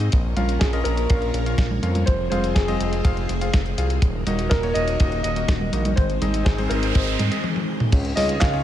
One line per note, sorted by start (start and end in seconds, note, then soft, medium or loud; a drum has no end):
0.00 0.10 G#3 medium
0.00 0.10 C4 medium
0.00 0.10 C5 medium
0.12 0.34 A#1 loud
0.12 3.98 F3 medium
0.12 2.05 A#3 medium
0.12 2.05 C#4 medium
0.12 2.05 A#4 medium
0.12 2.05 C#5 medium
0.12 kick loud
0.12 closed hi-hat medium
0.36 0.58 A#1 loud
0.36 0.70 C#4 medium
0.36 0.70 F4 medium
0.36 0.70 A#4 medium
0.36 0.70 F5 loud
0.36 closed hi-hat medium
0.36 high conga medium
0.49 closed hi-hat soft
0.59 0.83 A#1 loud
0.59 0.65 G#4 medium
0.59 kick medium
0.59 snare loud
0.59 closed hi-hat medium
0.73 1.07 C#4 loud
0.73 1.07 F4 medium
0.73 1.07 A#4 medium
0.73 1.07 D#5 loud
0.73 closed hi-hat soft
0.84 1.07 A#1 loud
0.84 2.10 A#4 loud
0.84 closed hi-hat medium
0.97 closed hi-hat soft
1.10 1.31 A#1 loud
1.10 1.38 C#4 medium
1.10 1.38 F4 medium
1.10 1.38 A#4 medium
1.10 1.38 F5 loud
1.10 kick loud
1.10 closed hi-hat medium
1.22 closed hi-hat soft
1.34 1.56 A#1 medium
1.34 closed hi-hat medium
1.46 1.64 C#4 medium
1.46 1.64 F4 medium
1.46 1.64 A#4 medium
1.46 1.64 F5 medium
1.46 closed hi-hat medium
1.58 1.80 A#1 medium
1.58 kick loud
1.58 snare loud
1.58 closed hi-hat medium
1.71 high conga medium
1.83 2.04 F2 medium
1.83 2.00 C#4 medium
1.83 2.00 F4 medium
1.83 2.00 A#4 medium
1.83 2.00 F5 medium
1.83 closed hi-hat medium
1.95 closed hi-hat medium
1.95 high conga medium
2.06 2.29 F1 loud
2.06 4.00 G#3 medium
2.06 4.00 C4 medium
2.06 4.00 G#4 medium
2.06 2.29 C5 loud
2.06 4.00 C5 medium
2.06 kick loud
2.06 closed hi-hat medium
2.30 2.53 F1 medium
2.30 2.65 C4 medium
2.30 2.65 F4 medium
2.30 2.65 G#4 medium
2.30 2.53 C5 loud
2.30 2.65 F5 loud
2.30 closed hi-hat medium
2.30 high conga medium
2.44 closed hi-hat soft
2.55 2.77 F1 loud
2.55 3.24 G#4 medium
2.55 kick medium
2.55 snare loud
2.55 closed hi-hat medium
2.68 3.02 C4 loud
2.68 3.02 F4 medium
2.68 3.02 G#4 medium
2.68 3.02 D#5 loud
2.68 closed hi-hat soft
2.68 high conga medium
2.80 3.02 F1 loud
2.80 closed hi-hat medium
2.93 closed hi-hat medium
3.05 3.26 F1 loud
3.05 3.33 C4 medium
3.05 3.33 F4 medium
3.05 3.33 G#4 medium
3.05 3.33 F5 loud
3.05 kick loud
3.05 closed hi-hat medium
3.17 closed hi-hat soft
3.29 3.51 F1 medium
3.29 closed hi-hat medium
3.41 3.59 C4 medium
3.41 3.59 F4 medium
3.41 3.59 G#4 medium
3.41 3.59 F5 medium
3.41 closed hi-hat medium
3.54 3.75 F1 medium
3.54 kick loud
3.54 snare loud
3.54 closed hi-hat medium
3.66 closed hi-hat soft
3.78 4.00 C2 medium
3.78 3.95 C4 medium
3.78 3.95 F4 medium
3.78 3.95 G#4 medium
3.78 3.95 F5 medium
3.78 closed hi-hat medium
3.90 closed hi-hat medium
4.02 4.24 D#1 loud
4.02 7.89 D#3 medium
4.02 5.95 F#3 medium
4.02 5.95 A#3 medium
4.02 5.95 F#4 medium
4.02 5.95 A#4 medium
4.02 kick loud
4.02 closed hi-hat medium
4.27 4.48 D#1 loud
4.27 4.60 A#3 medium
4.27 4.60 D#4 medium
4.27 4.60 F#4 medium
4.27 4.60 D#5 loud
4.27 closed hi-hat medium
4.27 high conga medium
4.39 closed hi-hat medium
4.49 4.73 D#1 loud
4.49 4.75 A#4 medium
4.49 kick medium
4.49 snare loud
4.49 closed hi-hat medium
4.63 4.97 A#3 medium
4.63 4.97 D#4 medium
4.63 4.97 F#4 medium
4.63 4.97 C#5 loud
4.63 closed hi-hat soft
4.74 4.97 D#1 loud
4.74 5.21 D#5 loud
4.74 closed hi-hat medium
4.88 closed hi-hat medium
5.00 5.22 D#1 loud
5.00 5.28 A#3 medium
5.00 5.28 D#4 medium
5.00 5.28 F#4 medium
5.00 5.28 D#5 loud
5.00 kick loud
5.00 closed hi-hat medium
5.12 closed hi-hat soft
5.23 5.46 D#1 medium
5.23 5.93 D#5 loud
5.23 closed hi-hat medium
5.36 5.54 A#3 medium
5.36 5.54 D#4 medium
5.36 5.54 F#4 medium
5.36 5.54 D#5 medium
5.36 closed hi-hat medium
5.48 5.70 D#1 medium
5.48 kick loud
5.48 snare loud
5.48 closed hi-hat medium
5.61 high conga medium
5.73 5.95 A#1 medium
5.73 5.90 A#3 medium
5.73 5.90 D#4 medium
5.73 5.90 F#4 medium
5.73 5.90 D#5 medium
5.73 closed hi-hat medium
5.85 closed hi-hat medium
5.85 high conga medium
5.96 6.19 G#1 loud
5.96 7.90 G#3 medium
5.96 7.90 C4 medium
5.96 7.90 G#4 medium
5.96 6.47 C5 loud
5.96 7.90 C5 medium
5.96 kick loud
5.96 closed hi-hat medium
5.96 noise sweep medium
6.10 closed hi-hat soft
6.22 6.43 G#1 medium
6.22 6.55 C4 medium
6.22 6.55 D#4 medium
6.22 6.55 G#4 medium
6.22 6.55 D#5 loud
6.22 closed hi-hat medium
6.22 high conga medium
6.34 closed hi-hat medium
6.45 6.68 G#1 loud
6.45 6.71 G#4 medium
6.45 kick loud
6.45 snare loud
6.45 closed hi-hat medium
6.58 6.92 C4 loud
6.58 6.92 D#4 medium
6.58 6.92 G#4 medium
6.58 6.92 C5 loud
6.58 closed hi-hat soft
6.58 high conga medium
6.69 6.92 G#1 loud
6.69 6.95 A#4 medium
6.69 closed hi-hat medium
6.83 closed hi-hat medium
6.94 7.17 G#1 loud
6.94 7.23 C4 medium
6.94 7.23 D#4 medium
6.94 7.23 G#4 medium
6.94 7.40 C5 medium
6.94 7.23 D#5 loud
6.94 kick loud
6.94 closed hi-hat medium
7.07 closed hi-hat soft
7.19 7.30 G#2 medium
7.19 closed hi-hat medium
7.19 high conga medium
7.32 7.44 C4 medium
7.32 7.44 D#4 medium
7.32 7.44 G#4 medium
7.32 7.44 D#5 medium
7.32 closed hi-hat medium
7.44 high tom medium
7.56 high tom medium
7.80 mid tom medium
7.92 8.14 C#2 loud
7.92 8.63 G#3 medium
7.92 8.63 C#4 medium
7.92 8.63 D#4 medium
7.92 8.63 F4 medium
7.92 8.63 C#5 medium
7.92 kick loud
7.92 closed hi-hat medium
7.92 crash loud
8.05 closed hi-hat soft
8.16 8.39 C#2 loud
8.16 8.51 C#4 medium
8.16 8.51 F4 medium
8.16 8.51 G#4 medium
8.16 8.41 D#5 loud
8.16 8.51 D#5 loud
8.16 open hi-hat loud
8.16 high conga medium
8.29 closed hi-hat medium
8.40 8.63 C#2 loud
8.40 8.63 F5 loud
8.40 kick loud
8.40 snare loud
8.40 clap medium
8.40 closed hi-hat medium
8.53 8.63 C#4 loud
8.53 8.63 F4 medium
8.53 8.63 G#4 medium
8.53 8.63 C#5 loud